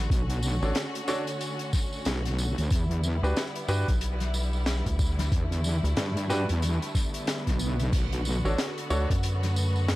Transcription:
Already playing: string section D3 A3 F#4
0.10 wobble bass B1, string section C#4, kick, closed hi-hat, tambourine
0.30 closed hi-hat, tambourine
0.43 tambourine
0.62 analog synth bass A1, grand piano D4 F#4 A4 C#5, tambourine
0.75 snare, closed hi-hat, tambourine
0.95 closed hi-hat, tambourine
1.08 grand piano D4 F#4 A4 C#5, snare, tambourine
1.27 closed hi-hat, tambourine
1.41 closed hi-hat, tambourine
1.59 closed hi-hat, tambourine
1.73 kick, snare, tambourine
1.93 tambourine
2.05 wobble bass B1, snare, closed hi-hat, tambourine
2.25 snare, closed hi-hat, tambourine
2.39 tambourine
2.58 wobble bass D2, closed hi-hat, tambourine
2.70 wobble bass E2, string section D3 G3 B3 E4, kick, closed hi-hat, tambourine
2.91 closed hi-hat
3.03 tambourine
3.23 analog synth bass D2, grand piano D4 F#4 G4 B4, tambourine
3.36 snare, closed hi-hat, tambourine
3.55 closed hi-hat, tambourine
3.68 analog synth bass G2, grand piano D4 F#4 G4 B4, tambourine
3.88 analog synth bass B1, kick, closed hi-hat, tambourine
4.01 closed hi-hat, tambourine
4.20 snare, closed hi-hat, tambourine
4.34 tambourine
4.53 tambourine
4.66 snare, closed hi-hat, tambourine
4.86 analog synth bass D2, kick, closed hi-hat, tambourine
4.99 kick, tambourine
5.19 snare, closed hi-hat, tambourine
5.31 wobble bass E2, string section A3, kick, closed hi-hat, tambourine
5.52 closed hi-hat, tambourine
5.64 tambourine
5.84 analog synth bass D2, closed hi-hat, tambourine
5.97 wobble bass G2, snare, closed hi-hat, tambourine
6.17 closed hi-hat, tambourine
6.30 grand piano D4 F#4 G4 B4, snare, tambourine
6.49 wobble bass E2, closed hi-hat, tambourine
6.62 closed hi-hat, tambourine, swell
6.82 closed hi-hat, tambourine
6.95 kick, snare, tambourine
7.14 closed hi-hat, tambourine
7.27 snare, closed hi-hat, tambourine
7.47 wobble bass B1, kick, snare, closed hi-hat, tambourine
7.59 tambourine
7.80 closed hi-hat, tambourine
7.92 wobble bass B1, string section A3 B3 F#4, kick, closed hi-hat, tambourine, crash
8.12 closed hi-hat, tambourine
8.25 tambourine
8.45 analog synth bass A1, grand piano D4 F#4 A4 C#5, tambourine
8.58 snare, closed hi-hat, tambourine
8.78 closed hi-hat, tambourine
8.90 analog synth bass D2, grand piano D4 F#4 A4 C#5, tambourine
9.10 analog synth bass F#2, kick, closed hi-hat, tambourine
9.23 closed hi-hat, tambourine
9.43 snare, closed hi-hat, tambourine
9.56 tambourine
9.76 tambourine
9.88 snare, closed hi-hat, tambourine

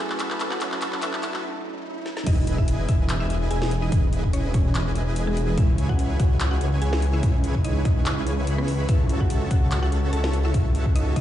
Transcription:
Already playing: tine electric piano F#3, supersaw synth F#4 A4 B4 E5 A5, synth pluck G#4 G#5, riser
0.00 tine electric piano A3 C#4 E4
0.10 clap
0.20 synth pluck B4 B5, clap, closed hi-hat
0.30 clap
0.40 supersaw synth F#4 A4 B4 E5 A5, clap, closed hi-hat
0.51 synth pluck F#4 F#5, clap
0.59 tine electric piano F#3 A3 C#4 E4, supersaw synth F#4 A4 B4 E5 A5, clap, closed hi-hat
0.72 clap
0.82 clap, closed hi-hat
0.93 clap
1.02 synth pluck E4 E5, clap, closed hi-hat
1.13 clap
1.23 synth pluck E4 E5, supersaw synth F#4 A4 B4 E5 A5, clap, closed hi-hat
1.33 tine electric piano F#3 A3 C#4 E4, clap
1.44 swell
1.62 tine electric piano F#3 A3 C#4 E4
2.06 snare
2.17 snare
2.26 detuned saw bass E1, synth pluck D#4 D#5, supersaw synth E4 G#4 B4 D#5 G#5, kick, closed hi-hat, crash, sub drop
2.47 closed hi-hat
2.58 synth pluck E4 E5, kick
2.68 closed hi-hat
2.89 synth pluck E4 E5, supersaw synth G#4 G#5, kick, closed hi-hat
3.09 clap, closed hi-hat
3.20 synth pluck E4 E5
3.30 closed hi-hat
3.51 detuned saw bass E1, supersaw synth E4 G#4 B4 D#5 G#5, synth pluck G#4 G#5, closed hi-hat
3.62 snare
3.71 closed hi-hat
3.82 synth pluck D#4 D#5
3.92 detuned saw bass E1, supersaw synth E4 G#4 B4 D#5 G#5, kick, closed hi-hat
4.13 closed hi-hat
4.24 kick
4.33 synth pluck C#4 C#5, closed hi-hat
4.54 detuned saw bass E1, synth pluck C#4 C#5, supersaw synth E4 B4 D#5, kick, closed hi-hat
4.75 clap, closed hi-hat
4.95 closed hi-hat
5.16 detuned saw bass E1, supersaw synth E4 G#4 B4 D#5 G#5, closed hi-hat
5.27 synth pluck G#3 G#4
5.37 closed hi-hat
5.57 detuned saw bass C#2, synth pluck E4 E5, supersaw synth G#4 C#5 G#5, kick, closed hi-hat
5.78 closed hi-hat
5.89 synth pluck F#4 F#5, kick
5.99 closed hi-hat
6.19 detuned saw bass C#2, supersaw synth E4 G#4 B4 C#5 G#5, synth pluck F#4 F#5, kick, closed hi-hat
6.40 clap, closed hi-hat
6.51 synth pluck F#4 F#5
6.61 closed hi-hat
6.82 detuned saw bass C#2, supersaw synth E4 G#4 B4 C#5 G#5, synth pluck G#4 G#5, closed hi-hat
6.93 snare
7.02 closed hi-hat
7.13 synth pluck E4 E5
7.23 detuned saw bass C#2, supersaw synth E4 G#4 B4 G#5, kick, closed hi-hat
7.44 closed hi-hat
7.55 kick
7.64 synth pluck D#4 D#5, closed hi-hat
7.85 synth pluck D#4 D#5, supersaw synth E4 G#4 B4 C#5 G#5, kick, closed hi-hat
8.06 clap, closed hi-hat
8.27 closed hi-hat
8.47 detuned saw bass C#2, supersaw synth E4 G#4 B4 C#5 B5, closed hi-hat
8.58 synth pluck B3 B4
8.68 open hi-hat
8.89 detuned saw bass C#2, synth pluck E4 E5, supersaw synth F#4 A4 E5, kick, closed hi-hat
9.09 closed hi-hat
9.20 synth pluck F#4 F#5, kick
9.30 closed hi-hat
9.51 detuned saw bass C#2, synth pluck F#4 F#5, kick, closed hi-hat
9.71 clap, closed hi-hat
9.83 synth pluck F#4 F#5
9.92 closed hi-hat
10.13 detuned saw bass C#2, supersaw synth F#4 A4 C#5 E5 A5, synth pluck A4 A5, closed hi-hat
10.24 snare
10.34 closed hi-hat
10.45 synth pluck E4 E5
10.54 detuned saw bass C#2, supersaw synth F#4 A4 C#5 E5 A5, kick, closed hi-hat
10.75 closed hi-hat
10.86 kick
10.95 synth pluck D#4 D#5, closed hi-hat
11.16 detuned saw bass C#2, synth pluck D#4 D#5, supersaw synth F#4 A4 C#5 E5 A5, kick, closed hi-hat

